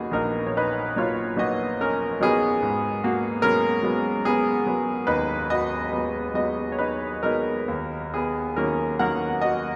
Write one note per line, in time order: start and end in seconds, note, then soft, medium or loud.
0.00 0.96 F#3 soft
0.00 0.96 A#3 soft
0.00 2.23 B3 soft
0.00 1.82 C#4 soft
0.00 0.14 D#4 soft
0.00 0.10 F#4 medium
0.00 2.23 G#4 soft
0.00 0.13 A#4 soft
0.11 2.58 A#1 soft
0.11 0.46 D#4 soft
0.11 0.49 A#4 medium
0.47 0.54 C#5 soft
0.57 0.95 D#4 soft
0.57 0.99 B4 medium
0.96 1.35 F#3 soft
0.96 1.35 A#3 soft
0.96 1.36 D#4 soft
0.96 1.37 F4 soft
0.96 1.41 C#5 medium
1.36 2.18 F#3 soft
1.36 2.18 A#3 soft
1.36 2.18 D#4 soft
1.36 1.78 F#4 medium
1.36 1.82 D#5 medium
1.81 2.20 C#4 medium
1.81 2.19 A#4 medium
2.20 2.61 F#3 soft
2.20 3.00 B3 medium
2.20 2.61 D#4 soft
2.20 3.06 G#4 medium
2.20 2.61 A#4 soft
2.62 5.05 G#2 soft
3.04 3.42 A#3 soft
3.04 3.45 F#4 medium
3.42 3.81 F#3 soft
3.42 3.82 G#3 soft
3.42 3.83 B3 soft
3.42 4.23 C#4 medium
3.42 4.28 A#4 medium
3.83 4.64 F#3 soft
3.83 4.64 G#3 soft
3.83 4.26 B3 soft
4.25 4.66 B3 medium
4.25 5.05 G#4 medium
4.66 5.48 F#3 soft
4.66 5.48 G#3 soft
4.66 5.48 B3 soft
5.07 7.66 D#2 soft
5.07 5.47 D#4 medium
5.07 5.51 B4 medium
5.50 6.34 F#4 soft
5.50 6.34 D#5 medium
5.92 6.33 F#3 soft
5.92 6.33 G#3 soft
5.92 6.34 B3 soft
6.34 7.22 F#3 soft
6.34 7.22 G#3 soft
6.34 7.22 B3 soft
6.34 6.71 F#4 soft
6.34 6.74 D#5 medium
6.72 6.80 C#5 soft
6.79 7.22 D#4 soft
6.79 7.21 B4 medium
7.23 7.68 F#3 soft
7.23 7.68 G#3 soft
7.23 7.68 B3 soft
7.23 8.11 D#4 soft
7.23 8.09 A#4 medium
7.68 9.76 D#2 soft
8.14 8.56 B3 soft
8.14 8.55 G#4 medium
8.56 8.98 D#3 soft
8.56 8.99 F#3 soft
8.56 8.98 A#3 soft
8.56 8.98 C#4 soft
8.56 8.99 A#4 medium
8.99 9.76 D#3 soft
8.99 9.76 F#3 soft
8.99 9.76 A#3 soft
8.99 9.40 A#4 soft
8.99 9.44 F#5 medium
9.41 9.76 F#4 soft
9.41 9.76 D#5 medium